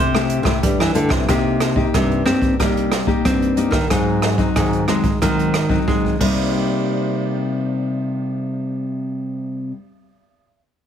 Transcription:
0.00 0.39 C3 loud
0.00 0.60 C3 medium
0.00 0.59 C5 medium
0.15 0.42 A3 medium
0.15 0.42 E4 medium
0.15 0.42 G4 medium
0.15 cross-stick medium
0.30 closed hi-hat medium
0.43 0.59 C3 medium
0.43 0.90 A3 medium
0.43 0.90 E4 medium
0.43 0.90 G4 medium
0.43 kick medium
0.43 cross-stick medium
0.63 1.25 G2 medium
0.63 0.77 G3 medium
0.63 kick medium
0.63 closed hi-hat medium
0.80 0.94 E3 medium
0.80 cross-stick medium
0.95 1.10 D3 medium
0.95 1.25 A3 medium
0.95 1.26 E4 medium
0.95 1.26 G4 medium
0.95 closed hi-hat medium
1.09 1.25 C3 medium
1.09 kick medium
1.09 cross-stick medium
1.29 1.84 C3 loud
1.29 1.91 C3 medium
1.29 1.73 A#3 soft
1.29 1.73 D#4 medium
1.29 1.73 G4 medium
1.29 kick medium
1.29 cross-stick medium
1.29 closed hi-hat medium
1.60 cross-stick medium
1.60 closed hi-hat soft
1.76 2.21 A#3 medium
1.76 2.21 D#4 medium
1.76 2.21 G4 medium
1.76 kick medium
1.94 2.56 G2 medium
1.94 2.22 C3 medium
1.94 kick medium
1.94 cross-stick medium
1.94 closed hi-hat medium
2.11 closed hi-hat soft
2.25 2.54 A#3 medium
2.25 2.54 C4 medium
2.25 2.54 D#4 medium
2.25 2.54 G4 medium
2.25 cross-stick medium
2.25 closed hi-hat soft
2.42 kick medium
2.42 closed hi-hat soft
2.59 3.22 C3 medium
2.59 3.15 G3 loud
2.59 2.90 A#3 medium
2.59 2.90 D#4 medium
2.59 2.91 G4 medium
2.59 kick medium
2.59 cross-stick medium
2.59 closed hi-hat medium
2.77 closed hi-hat soft
2.92 cross-stick medium
2.92 closed hi-hat soft
3.07 3.52 A#3 medium
3.07 3.52 D#4 medium
3.07 3.52 G4 medium
3.07 kick medium
3.25 3.87 G2 medium
3.25 3.67 C4 medium
3.25 kick medium
3.25 cross-stick medium
3.25 closed hi-hat medium
3.42 closed hi-hat soft
3.57 3.77 A#3 medium
3.57 3.77 D#4 medium
3.57 3.77 G4 medium
3.57 closed hi-hat soft
3.71 3.86 D#3 medium
3.71 kick medium
3.71 cross-stick medium
3.71 closed hi-hat soft
3.90 4.53 G#2 medium
3.90 4.46 G#2 medium
3.90 4.34 F#3 medium
3.90 4.35 C4 soft
3.90 4.35 D#4 medium
3.90 kick medium
3.90 cross-stick medium
3.90 closed hi-hat medium
4.22 cross-stick medium
4.22 closed hi-hat soft
4.38 4.83 F#3 medium
4.38 4.83 C4 medium
4.38 4.83 D#4 medium
4.38 kick medium
4.38 closed hi-hat soft
4.56 4.84 G#2 medium
4.56 5.19 D#3 medium
4.56 kick medium
4.56 cross-stick medium
4.56 closed hi-hat medium
4.73 closed hi-hat soft
4.88 5.08 F#3 medium
4.88 5.17 G#3 medium
4.88 5.08 C4 medium
4.88 5.08 D#4 medium
4.88 cross-stick medium
4.88 closed hi-hat soft
5.04 kick medium
5.04 closed hi-hat soft
5.22 5.85 G#2 medium
5.22 5.78 D#3 medium
5.22 5.53 F#3 medium
5.22 5.53 C4 medium
5.22 5.53 D#4 medium
5.22 kick medium
5.22 cross-stick medium
5.22 closed hi-hat medium
5.39 closed hi-hat soft
5.54 cross-stick medium
5.54 closed hi-hat medium
5.70 6.14 F#3 medium
5.70 6.15 C4 medium
5.70 6.15 D#4 medium
5.70 kick medium
5.88 6.18 D#3 medium
5.88 6.16 G#3 medium
5.88 kick medium
6.05 kick soft
6.19 9.74 C3 medium
6.19 9.71 C3 medium
6.19 9.76 G3 medium
6.19 kick medium
6.19 crash medium
6.23 9.78 A#3 medium
6.23 9.79 D#4 medium

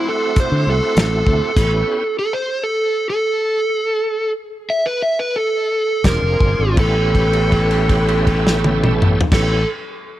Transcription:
0.00 1.52 A3 medium
0.00 1.52 C4 medium
0.00 1.53 E4 medium
0.00 1.53 F#4 medium
0.00 1.54 C5 medium
0.00 1.52 D5 medium
0.00 1.54 F#5 medium
0.00 1.54 C6 medium
0.09 0.37 A4 medium
0.36 0.67 C5 medium
0.36 kick loud
0.36 closed hi-hat medium
0.52 0.64 D3 medium
0.67 0.79 C2 medium
0.67 0.97 A4 medium
0.97 1.22 A1 loud
0.97 2.18 A4 medium
0.97 snare loud
0.97 closed hi-hat medium
1.27 1.39 D2 medium
1.27 kick medium
1.56 1.82 A1 loud
1.56 2.04 B3 medium
1.56 2.04 C#4 medium
1.56 2.04 E4 medium
1.56 2.04 G4 medium
1.56 2.04 B4 medium
1.56 2.04 C#5 medium
1.56 2.04 G5 medium
1.56 2.04 B5 medium
1.56 kick loud
1.56 closed hi-hat medium
1.56 crash medium
2.19 2.33 A4 medium
2.33 2.62 C5 medium
2.64 3.07 A4 medium
3.10 4.32 A4 loud
4.70 4.85 E5 loud
4.86 5.01 B4 medium
5.02 5.18 E5 loud
5.19 5.35 B4 medium
5.36 6.03 A4 loud
6.03 6.21 E1 medium
6.03 6.77 C4 medium
6.03 6.78 D4 medium
6.03 6.78 F4 medium
6.03 6.77 G#4 medium
6.03 6.76 A#4 medium
6.03 6.76 C5 medium
6.03 6.76 D5 medium
6.03 6.76 G#5 medium
6.03 6.76 C6 medium
6.03 kick medium
6.03 snare loud
6.03 closed hi-hat medium
6.22 6.39 F1 medium
6.40 6.57 G1 medium
6.40 kick medium
6.59 6.76 G#1 medium
6.77 9.19 A1 medium
6.77 9.19 B3 medium
6.77 9.19 C#4 medium
6.77 9.19 E4 medium
6.77 9.19 G4 medium
6.77 9.20 A4 medium
6.77 9.19 B4 medium
6.77 9.19 C#5 medium
6.77 9.19 G5 medium
6.77 kick loud
6.77 crash medium
7.15 kick medium
7.15 crash soft
7.33 crash soft
7.52 kick medium
7.52 crash soft
7.71 crash soft
7.89 kick medium
7.89 crash soft
8.08 crash medium
8.27 kick medium
8.27 crash soft
8.47 snare medium
8.64 high tom medium
8.84 mid tom medium
9.02 mid tom medium
9.21 floor tom loud
9.31 9.63 A1 medium
9.31 9.63 B3 medium
9.31 9.63 C#4 medium
9.31 9.63 E4 medium
9.31 9.63 G4 medium
9.31 9.66 A4 loud
9.31 9.63 B4 medium
9.31 9.63 C#5 medium
9.31 9.63 G5 medium
9.31 kick loud
9.31 snare loud
9.31 crash loud

